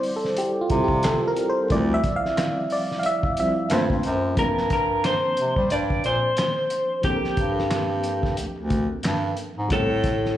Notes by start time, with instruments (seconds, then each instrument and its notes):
Already playing: fm electric piano G3 C4 E4 C5 D5
0.03 open hi-hat
0.16 fm electric piano A4
0.25 snare
0.37 fm electric piano G4, closed hi-hat
0.61 fm electric piano F4
0.70 bass clarinet C3, fm electric piano G3 C4 E4, kick, closed hi-hat
0.84 fm electric piano G4
0.88 kick
1.03 fm electric piano A4, snare, clap, closed hi-hat
1.28 fm electric piano A#4
1.37 closed hi-hat
1.50 fm electric piano C5
1.70 bass clarinet D2, fm electric piano F3 G3 C4 E4 D5, kick, closed hi-hat
1.94 fm electric piano E5
2.04 kick, closed hi-hat
2.16 fm electric piano F5
2.26 snare
2.38 snare, clap, closed hi-hat
2.70 fm electric piano D5, open hi-hat
2.91 snare
2.99 fm electric piano F5, closed hi-hat
3.06 fm electric piano E5
3.23 kick
3.37 fm electric piano F3 G3 C4 E4 E5, closed hi-hat
3.70 bass clarinet G2, fm electric piano A3 A#3 C4 F4 C5, snare, clap, closed hi-hat
3.90 bass clarinet G2, kick
4.03 bass clarinet F#2, closed hi-hat
4.35 bass clarinet G2, fm electric piano F3 A3 C4, clean electric guitar A#4, kick, closed hi-hat
4.41 fm electric piano A#3 D4 A5
4.58 snare
4.70 clean electric guitar A#4, kick, snare, closed hi-hat
5.04 clean electric guitar C5, snare, clap, closed hi-hat
5.37 bass clarinet C3, closed hi-hat
5.56 bass clarinet G3, kick
5.70 bass clarinet G2, clean electric guitar D5, closed hi-hat
5.90 kick
6.04 bass clarinet A#2, clean electric guitar C5, closed hi-hat
6.37 snare, clap, closed hi-hat
6.70 closed hi-hat
7.02 fm electric piano F3 A#3 C4, clean electric guitar G4, kick, closed hi-hat
7.08 fm electric piano D4 A4
7.16 fm electric piano A#4
7.24 snare
7.37 bass clarinet G2, kick, closed hi-hat
7.59 snare
7.71 snare, clap, closed hi-hat
8.04 closed hi-hat
8.23 kick, snare
8.37 bass clarinet D2, closed hi-hat
8.58 bass clarinet D2
8.70 kick, closed hi-hat
9.03 bass clarinet G2, snare, clap, closed hi-hat
9.37 closed hi-hat
9.58 bass clarinet G#2
9.68 bass clarinet A2, fm electric piano G3 A3, kick, closed hi-hat
9.72 fm electric piano B3 E4 A4, clean electric guitar A4
9.79 fm electric piano C4
10.04 kick, snare, closed hi-hat
10.26 snare